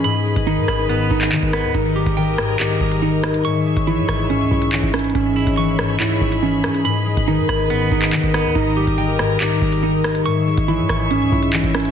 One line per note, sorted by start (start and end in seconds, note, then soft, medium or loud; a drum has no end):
0.00 2.73 C#4 loud
0.00 0.53 E4 medium
0.00 1.71 G#4 medium
0.00 1.71 B5 medium
0.04 0.67 G#2 loud
0.04 1.73 B4 medium
0.04 1.73 D#5 medium
0.04 0.67 B5 medium
0.04 closed hi-hat medium
0.25 0.52 G#3 medium
0.36 0.59 G#1 loud
0.36 closed hi-hat medium
0.47 1.31 D#3 medium
0.47 1.09 D#4 medium
0.57 0.68 G#2 loud
0.68 0.91 G#1 loud
0.68 1.75 B5 medium
0.68 cross-stick loud
0.68 closed hi-hat loud
0.89 1.02 G1 loud
0.89 1.73 G#2 loud
0.89 1.52 B3 medium
0.89 closed hi-hat medium
1.00 1.10 G#1 loud
1.10 1.33 G#1 loud
1.10 1.37 G#3 medium
1.10 1.73 D#4 medium
1.21 clap medium
1.21 closed hi-hat medium
1.32 1.80 D#3 medium
1.32 1.42 D#3 loud
1.32 clap loud
1.43 1.65 G#1 loud
1.43 closed hi-hat medium
1.53 1.75 B3 loud
1.53 3.23 D#4 loud
1.53 cross-stick loud
1.53 closed hi-hat medium
1.64 1.74 D#2 loud
1.74 2.05 G#1 loud
1.74 2.37 G#2 medium
1.74 3.01 D#4 loud
1.74 3.43 G4 medium
1.74 3.43 A#4 medium
1.74 3.43 D#5 medium
1.74 3.43 A#5 medium
1.74 closed hi-hat medium
1.96 2.22 G3 medium
1.96 2.58 G4 medium
2.06 2.61 G#1 loud
2.06 closed hi-hat medium
2.17 3.01 D#3 medium
2.17 3.45 G5 medium
2.38 2.58 G#2 medium
2.38 cross-stick loud
2.38 closed hi-hat medium
2.59 2.80 B1 loud
2.59 3.44 G#2 loud
2.59 3.45 G4 medium
2.59 clap loud
2.81 3.42 G#1 loud
2.81 3.07 G3 medium
2.92 closed hi-hat medium
3.02 3.50 D#3 medium
3.02 3.45 D#4 medium
3.23 3.93 D#4 medium
3.23 cross-stick loud
3.23 closed hi-hat medium
3.34 closed hi-hat medium
3.45 4.07 G#2 medium
3.45 5.13 G#4 medium
3.45 5.13 C#5 medium
3.45 5.13 E5 medium
3.45 5.13 C#6 medium
3.45 4.08 C#6 medium
3.45 closed hi-hat medium
3.66 4.50 G#3 medium
3.77 3.99 G#1 loud
3.77 closed hi-hat medium
3.87 4.71 E3 medium
3.87 4.50 E4 medium
3.98 4.08 G#2 loud
4.09 4.42 G#1 loud
4.09 4.29 G#2 medium
4.09 5.15 C#6 medium
4.09 cross-stick loud
4.09 closed hi-hat medium
4.30 5.14 G#2 medium
4.30 4.93 C#4 medium
4.30 closed hi-hat medium
4.40 4.51 D#2 loud
4.51 4.82 B1 loud
4.51 5.20 G#3 medium
4.51 5.15 E4 medium
4.62 closed hi-hat medium
4.73 5.20 E3 medium
4.73 clap loud
4.83 5.14 G#1 loud
4.83 closed hi-hat medium
4.94 5.14 C#4 loud
4.94 7.34 E4 medium
4.94 cross-stick loud
4.94 closed hi-hat medium
4.99 closed hi-hat medium
5.04 closed hi-hat medium
5.10 closed hi-hat medium
5.15 5.46 G#1 loud
5.15 5.77 G#2 medium
5.15 6.41 C#4 loud
5.15 8.52 G#4 medium
5.15 6.83 C#5 medium
5.15 6.83 E5 medium
5.15 8.52 B5 medium
5.15 closed hi-hat medium
5.36 6.20 G#3 medium
5.36 5.57 E4 medium
5.47 6.01 G#1 loud
5.47 closed hi-hat medium
5.57 6.41 E3 medium
5.57 6.84 C#6 loud
5.79 5.99 G#2 medium
5.79 cross-stick loud
5.79 closed hi-hat medium
6.00 6.12 D#2 loud
6.00 6.84 G#2 loud
6.00 6.85 E4 medium
6.00 clap loud
6.11 6.21 G#1 loud
6.21 6.65 G#1 loud
6.21 6.90 G#3 medium
6.32 closed hi-hat medium
6.42 6.90 E3 medium
6.42 6.85 C#4 loud
6.64 6.84 G#2 loud
6.64 9.54 C#4 medium
6.64 cross-stick loud
6.64 closed hi-hat medium
6.75 closed hi-hat medium
6.85 7.48 G#2 loud
6.85 8.54 B4 medium
6.85 10.22 D#5 medium
6.85 7.48 B5 medium
6.85 closed hi-hat medium
7.06 7.33 G#3 medium
7.17 7.40 G#1 loud
7.17 closed hi-hat medium
7.28 8.11 D#3 medium
7.28 7.90 D#4 medium
7.38 7.48 G#2 loud
7.49 7.72 G#1 loud
7.49 7.69 G#2 medium
7.49 8.55 B5 medium
7.49 cross-stick loud
7.49 closed hi-hat medium
7.70 7.82 G1 loud
7.70 8.54 G#2 loud
7.70 8.33 B3 medium
7.70 closed hi-hat medium
7.81 7.91 G#1 loud
7.91 8.14 G#1 loud
7.91 8.18 G#3 medium
7.91 8.54 D#4 medium
8.02 clap medium
8.02 closed hi-hat medium
8.13 8.60 D#3 medium
8.13 8.23 D#3 loud
8.13 clap loud
8.23 8.46 G#1 loud
8.23 closed hi-hat medium
8.34 8.55 B3 loud
8.34 10.04 D#4 medium
8.34 cross-stick loud
8.34 closed hi-hat medium
8.45 8.55 D#2 loud
8.55 8.86 G#1 loud
8.55 9.18 G#2 loud
8.55 9.82 D#4 loud
8.55 10.24 G4 medium
8.55 10.24 A#4 medium
8.55 10.24 A#5 medium
8.55 closed hi-hat medium
8.77 9.03 G3 medium
8.77 9.39 G4 medium
8.87 9.42 G#1 loud
8.87 closed hi-hat medium
8.98 9.82 D#3 medium
8.98 10.26 G5 medium
9.19 9.39 G#2 medium
9.19 cross-stick loud
9.19 closed hi-hat medium
9.40 9.61 B1 loud
9.40 10.25 G#2 medium
9.40 10.26 G4 medium
9.40 clap loud
9.62 10.23 G#1 loud
9.62 9.88 G3 medium
9.72 closed hi-hat medium
9.83 10.31 D#3 medium
9.83 10.26 D#4 medium
10.04 10.74 D#4 medium
10.04 cross-stick loud
10.04 closed hi-hat medium
10.15 closed hi-hat medium
10.26 10.88 G#2 loud
10.26 11.91 G#4 medium
10.26 11.91 C#5 medium
10.26 11.91 E5 medium
10.26 10.88 C#6 medium
10.26 11.91 C#6 medium
10.26 closed hi-hat medium
10.47 11.31 G#3 medium
10.57 10.80 G#1 loud
10.57 closed hi-hat medium
10.68 11.52 E3 medium
10.68 11.31 E4 medium
10.79 10.89 G#2 loud
10.89 11.23 G#1 loud
10.89 11.09 G#2 medium
10.89 11.91 C#6 medium
10.89 cross-stick loud
10.89 closed hi-hat medium
11.11 11.91 G#2 medium
11.11 11.73 C#4 medium
11.11 closed hi-hat medium
11.21 11.31 D#2 loud
11.32 11.63 B1 loud
11.32 11.91 G#3 medium
11.32 11.91 E4 medium
11.43 closed hi-hat medium
11.53 11.91 E3 medium
11.53 clap loud
11.64 11.91 G#1 loud
11.64 closed hi-hat medium
11.75 11.91 C#4 loud
11.75 11.91 E4 medium
11.75 cross-stick loud
11.75 closed hi-hat medium
11.80 closed hi-hat medium
11.85 closed hi-hat medium